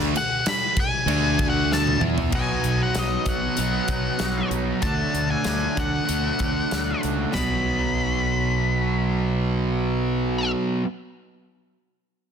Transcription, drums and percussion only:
0.16 crash
0.46 snare, crash
0.77 kick, crash
1.08 crash
1.39 kick, crash
1.72 snare
1.87 high tom
2.01 mid tom
2.18 floor tom
2.32 kick, crash
2.64 closed hi-hat
2.95 snare, closed hi-hat
3.26 kick, closed hi-hat
3.57 closed hi-hat
3.88 kick, closed hi-hat
4.19 snare, closed hi-hat
4.51 closed hi-hat
4.82 kick, closed hi-hat
5.15 closed hi-hat
5.44 snare, closed hi-hat
5.77 kick, closed hi-hat
6.09 closed hi-hat
6.39 kick, closed hi-hat
6.71 snare, closed hi-hat
7.03 closed hi-hat
7.34 snare, floor tom

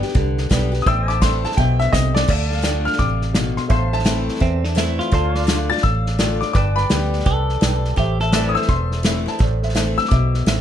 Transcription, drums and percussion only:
0.02 snare
0.08 snare
0.15 kick, snare
0.38 snare
0.51 kick, snare, hi-hat pedal
0.74 snare
0.80 snare
0.86 kick, snare
1.09 snare
1.22 kick, snare, hi-hat pedal
1.45 snare
1.51 snare
1.58 kick, snare
1.80 snare
1.93 kick, snare, hi-hat pedal
2.16 snare
2.29 kick, snare, crash
2.51 snare
2.57 snare
2.64 snare, hi-hat pedal
2.86 snare
2.93 snare
2.99 kick, snare
3.22 snare
3.35 snare, hi-hat pedal
3.57 snare
3.70 kick, snare
3.93 snare
3.99 snare
4.06 snare, hi-hat pedal
4.28 snare
4.35 snare
4.41 kick, snare
4.64 snare
4.77 snare, hi-hat pedal
4.99 snare
5.12 kick, snare
5.35 snare
5.42 snare
5.48 snare, hi-hat pedal
5.71 snare
5.78 snare
5.84 kick, snare
6.06 snare
6.19 snare, hi-hat pedal
6.42 snare
6.54 kick, snare
6.77 snare
6.90 snare, hi-hat pedal
7.13 snare
7.20 snare
7.26 kick, snare
7.49 snare
7.62 snare, hi-hat pedal
7.85 snare
7.97 kick, snare
8.20 snare
8.33 snare, hi-hat pedal
8.56 snare
8.62 snare
8.68 kick, snare
8.92 snare
9.04 snare, hi-hat pedal
9.27 snare
9.40 kick, snare
9.63 snare
9.69 snare
9.76 snare, hi-hat pedal
9.98 snare
10.05 snare
10.11 kick, snare
10.34 snare
10.47 snare, hi-hat pedal

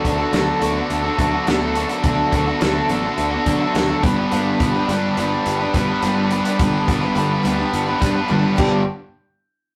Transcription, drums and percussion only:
0.05 kick, closed hi-hat
0.33 snare, closed hi-hat
0.62 closed hi-hat
0.90 closed hi-hat
1.19 kick, closed hi-hat
1.47 snare, closed hi-hat
1.75 closed hi-hat
1.89 closed hi-hat
2.04 kick, closed hi-hat
2.32 kick, closed hi-hat
2.61 snare, closed hi-hat
2.89 closed hi-hat
3.18 closed hi-hat
3.46 kick, closed hi-hat
3.75 snare, closed hi-hat
4.03 kick, closed hi-hat
4.32 closed hi-hat
4.60 kick, closed hi-hat
4.89 closed hi-hat
5.17 closed hi-hat
5.46 closed hi-hat
5.74 kick, closed hi-hat
6.02 closed hi-hat
6.31 closed hi-hat
6.45 closed hi-hat
6.59 kick, closed hi-hat
6.88 kick, closed hi-hat
7.17 closed hi-hat
7.45 closed hi-hat
7.74 closed hi-hat
8.02 kick, closed hi-hat
8.30 high tom
8.58 kick, crash

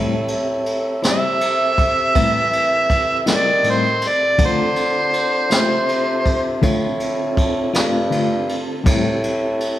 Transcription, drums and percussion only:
0.28 ride
0.66 ride
1.03 snare, ride
1.41 ride
1.78 kick, ride
2.15 kick, ride
2.53 ride
2.90 kick, ride
3.26 snare, ride
3.64 ride
4.01 snare, ride
4.38 kick, ride
4.76 ride
5.13 ride
5.50 snare, ride
5.89 ride
6.26 kick, ride
6.63 kick, snare, ride
7.00 ride
7.37 kick, ride
7.74 snare, ride
8.12 ride
8.49 ride
8.86 kick, ride
9.23 ride
9.60 ride

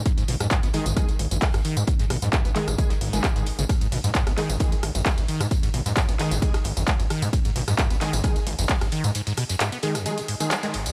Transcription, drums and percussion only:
0.06 kick, closed hi-hat, tambourine
0.18 closed hi-hat, tambourine
0.28 snare, closed hi-hat, open hi-hat
0.40 cross-stick, snare, closed hi-hat, tambourine
0.51 kick, snare, clap, closed hi-hat, tambourine
0.63 closed hi-hat, tambourine
0.73 closed hi-hat, open hi-hat
0.86 closed hi-hat, tambourine
0.97 kick, cross-stick, closed hi-hat, tambourine
1.09 closed hi-hat, tambourine
1.19 closed hi-hat, open hi-hat
1.31 closed hi-hat, tambourine
1.42 kick, snare, clap, closed hi-hat, open hi-hat, tambourine
1.54 cross-stick, closed hi-hat, tambourine
1.65 closed hi-hat, open hi-hat
1.77 closed hi-hat, tambourine
1.87 kick, closed hi-hat, tambourine
1.99 snare, closed hi-hat, tambourine
2.10 cross-stick, closed hi-hat, open hi-hat
2.22 snare, closed hi-hat, tambourine
2.33 kick, snare, clap, closed hi-hat, tambourine
2.45 closed hi-hat, tambourine
2.55 snare, clap, closed hi-hat, open hi-hat
2.68 cross-stick, closed hi-hat, tambourine
2.78 kick, closed hi-hat, tambourine
2.90 snare, closed hi-hat, tambourine
3.01 open hi-hat
3.13 closed hi-hat, tambourine
3.24 kick, cross-stick, snare, clap, closed hi-hat, tambourine
3.36 closed hi-hat, tambourine
3.46 closed hi-hat, open hi-hat
3.59 closed hi-hat, tambourine
3.69 kick, cross-stick, closed hi-hat, ride, tambourine
3.81 closed hi-hat, ride, tambourine
3.92 snare, closed hi-hat, open hi-hat, ride
4.04 snare, closed hi-hat, ride, tambourine
4.15 kick, snare, clap, closed hi-hat, ride, tambourine
4.27 cross-stick, closed hi-hat, ride, tambourine
4.38 snare, clap, closed hi-hat, open hi-hat, ride
4.50 closed hi-hat, ride, tambourine
4.60 kick, closed hi-hat, ride, tambourine
4.72 closed hi-hat, ride, tambourine
4.83 cross-stick, closed hi-hat, open hi-hat, ride
4.95 closed hi-hat, ride, tambourine
5.05 kick, snare, clap, closed hi-hat, open hi-hat, ride, tambourine
5.18 closed hi-hat, ride, tambourine
5.28 closed hi-hat, open hi-hat, ride
5.41 cross-stick, closed hi-hat, ride, tambourine
5.51 kick, closed hi-hat, ride, tambourine
5.63 snare, closed hi-hat, ride, tambourine
5.74 closed hi-hat, open hi-hat, ride
5.86 snare, closed hi-hat, ride, tambourine
5.97 kick, cross-stick, snare, clap, closed hi-hat, ride, tambourine
6.09 closed hi-hat, ride, tambourine
6.19 clap, closed hi-hat, open hi-hat, ride
6.31 snare, closed hi-hat, ride, tambourine
6.42 kick, closed hi-hat, ride, tambourine
6.54 cross-stick, snare, closed hi-hat, ride, tambourine
6.64 closed hi-hat, open hi-hat, ride
6.77 closed hi-hat, ride, tambourine
6.88 kick, snare, clap, closed hi-hat, ride, tambourine
7.00 closed hi-hat, ride, tambourine
7.10 cross-stick, closed hi-hat, open hi-hat, ride
7.22 closed hi-hat, ride, tambourine
7.33 kick, closed hi-hat, ride, tambourine
7.45 closed hi-hat, ride, tambourine
7.56 snare, closed hi-hat, open hi-hat, ride
7.68 cross-stick, snare, closed hi-hat, ride, tambourine
7.78 kick, snare, clap, closed hi-hat, ride, tambourine
7.90 closed hi-hat, ride, tambourine
8.01 snare, clap, closed hi-hat, open hi-hat, ride
8.13 closed hi-hat, ride, tambourine
8.24 kick, cross-stick, closed hi-hat, ride, tambourine
8.36 closed hi-hat, ride, tambourine
8.47 closed hi-hat, open hi-hat, ride
8.59 closed hi-hat, ride, tambourine
8.69 kick, snare, clap, closed hi-hat, open hi-hat, ride, tambourine
8.81 cross-stick, closed hi-hat, ride, tambourine
8.92 closed hi-hat, open hi-hat, ride
9.04 closed hi-hat, ride, tambourine
9.15 closed hi-hat, ride, tambourine
9.27 snare, closed hi-hat, ride, tambourine
9.37 cross-stick, closed hi-hat, open hi-hat, ride
9.49 snare, closed hi-hat, ride, tambourine
9.60 snare, clap, closed hi-hat, ride, tambourine
9.72 closed hi-hat, ride, tambourine
9.83 closed hi-hat, open hi-hat, ride
9.95 cross-stick, snare, closed hi-hat, ride, tambourine
10.06 closed hi-hat, ride, tambourine
10.18 closed hi-hat, ride, tambourine
10.28 open hi-hat, ride
10.40 closed hi-hat, ride, tambourine
10.51 cross-stick, snare, clap, closed hi-hat, ride, tambourine
10.63 closed hi-hat, ride, tambourine
10.74 closed hi-hat, open hi-hat, ride
10.86 closed hi-hat, ride, tambourine

